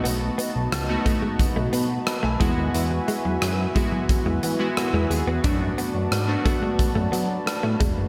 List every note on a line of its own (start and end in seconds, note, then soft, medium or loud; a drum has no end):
0.00 0.65 A3 medium
0.00 0.65 B3 medium
0.00 0.16 B3 medium
0.00 0.66 D#4 medium
0.00 0.69 F#4 medium
0.00 2.38 F#4 medium
0.00 8.08 B4 medium
0.00 2.37 D#5 medium
0.00 2.38 A5 medium
0.05 0.30 B1 loud
0.05 closed hi-hat medium
0.21 muted clean electric guitar stroke soft
0.38 0.50 B3 medium
0.38 closed hi-hat medium
0.56 0.68 B1 medium
0.72 0.97 C#2 medium
0.72 muted clean electric guitar stroke soft
0.72 cross-stick loud
0.72 closed hi-hat medium
0.89 1.02 A3 medium
0.89 1.02 B3 medium
0.89 1.02 D#4 medium
0.89 1.02 F#4 medium
1.05 2.06 A3 medium
1.05 1.17 A3 medium
1.05 2.06 B3 medium
1.05 2.06 D#4 medium
1.05 2.07 F#4 medium
1.05 kick medium
1.05 closed hi-hat medium
1.22 1.34 G#3 medium
1.39 muted clean electric guitar stroke soft
1.39 kick medium
1.39 closed hi-hat medium
1.56 1.69 B1 medium
1.56 1.68 A3 medium
1.73 1.99 B2 medium
1.73 1.85 B3 medium
1.73 2.05 B5 medium
1.73 closed hi-hat medium
2.07 2.23 A5 medium
2.07 muted clean electric guitar stroke soft
2.07 cross-stick loud
2.07 closed hi-hat medium
2.23 2.37 B1 medium
2.23 2.35 A3 medium
2.23 2.40 G#5 medium
2.40 2.53 E2 medium
2.40 3.48 G#3 medium
2.40 2.52 G#3 medium
2.40 3.48 B3 medium
2.40 3.49 E4 medium
2.40 8.08 F#4 medium
2.40 3.49 F#4 medium
2.40 5.41 E5 medium
2.40 2.72 F#5 medium
2.40 5.41 G#5 medium
2.40 kick medium
2.40 closed hi-hat medium
2.58 2.70 D#2 medium
2.74 3.00 E2 loud
2.74 closed hi-hat medium
2.91 muted clean electric guitar stroke soft
3.08 3.20 G#3 medium
3.08 closed hi-hat medium
3.25 3.38 E2 medium
3.25 3.37 F#3 medium
3.42 3.67 F#2 medium
3.42 muted clean electric guitar stroke soft
3.42 cross-stick loud
3.42 closed hi-hat medium
3.75 4.38 G#3 medium
3.75 3.87 G#3 medium
3.75 4.38 B3 medium
3.75 4.38 E4 medium
3.75 4.39 F#4 medium
3.75 kick medium
3.75 closed hi-hat medium
3.92 4.04 F#3 medium
4.09 muted clean electric guitar stroke soft
4.09 kick medium
4.09 closed hi-hat medium
4.26 4.39 E2 loud
4.26 4.38 G#3 medium
4.43 4.69 E3 loud
4.43 4.55 B3 medium
4.43 closed hi-hat medium
4.59 4.76 G#3 medium
4.59 4.77 B3 medium
4.59 4.77 E4 medium
4.59 4.77 F#4 medium
4.77 cross-stick loud
4.77 closed hi-hat medium
4.93 5.06 E2 medium
4.93 5.10 G#3 soft
4.93 5.05 G#3 medium
4.93 5.10 E4 medium
5.10 5.23 D#2 medium
5.10 5.27 B3 medium
5.10 5.26 G#4 medium
5.10 muted clean electric guitar stroke soft
5.10 closed hi-hat medium
5.27 5.40 E2 medium
5.27 5.39 B3 medium
5.27 5.44 F#4 medium
5.44 5.70 F#2 loud
5.44 6.06 A3 medium
5.44 6.07 B3 medium
5.44 6.07 D4 medium
5.44 5.56 D4 medium
5.44 6.07 F#4 medium
5.44 8.08 D5 medium
5.44 8.08 A5 medium
5.44 kick loud
5.44 closed hi-hat medium
5.61 muted clean electric guitar stroke soft
5.78 5.90 B3 medium
5.78 closed hi-hat medium
5.95 6.07 F#2 medium
6.11 6.37 G#2 medium
6.11 muted clean electric guitar stroke soft
6.11 cross-stick loud
6.11 closed hi-hat medium
6.27 6.40 A3 medium
6.27 6.41 B3 medium
6.27 6.41 D4 medium
6.27 6.41 F#4 medium
6.45 7.45 A3 medium
6.45 6.57 A3 medium
6.45 7.45 B3 medium
6.45 7.45 D4 medium
6.45 7.46 F#4 medium
6.45 kick medium
6.45 closed hi-hat medium
6.63 6.74 G#3 medium
6.79 muted clean electric guitar stroke soft
6.79 kick medium
6.79 closed hi-hat medium
6.95 7.08 F#2 medium
6.95 7.07 A3 medium
7.12 7.38 F#3 loud
7.12 7.24 B3 medium
7.12 closed hi-hat medium
7.46 muted clean electric guitar stroke soft
7.46 cross-stick loud
7.46 closed hi-hat medium
7.63 7.76 A2 medium
7.63 7.75 A3 medium
7.80 7.93 E1 medium
7.80 7.92 G#3 medium
7.80 kick medium
7.80 closed hi-hat medium
7.97 8.08 F#1 medium